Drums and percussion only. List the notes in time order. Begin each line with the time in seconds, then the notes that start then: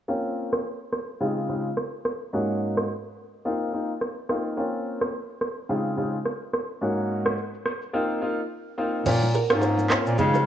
0.53 cross-stick
0.93 cross-stick
1.77 cross-stick
2.05 cross-stick
2.77 cross-stick
4.01 cross-stick
4.29 cross-stick
4.57 shaker
4.74 shaker
4.85 shaker
5.01 cross-stick, shaker
5.13 shaker
5.30 shaker
5.41 cross-stick, shaker
5.58 shaker
5.70 shaker
5.86 shaker
5.98 shaker
6.14 shaker
6.25 cross-stick, shaker
6.42 shaker
6.54 cross-stick
6.70 shaker
6.82 shaker
6.98 shaker
7.26 cross-stick, shaker
7.38 shaker
7.54 shaker
7.66 cross-stick, shaker
7.82 shaker
9.06 crash, low conga, shaker
9.22 low bongo, shaker
9.34 shaker
9.50 cross-stick, shaker
9.61 high bongo, shaker
9.78 low bongo, shaker
9.90 cross-stick, clap, shaker
10.06 shaker
10.18 low conga, shaker
10.34 low bongo, shaker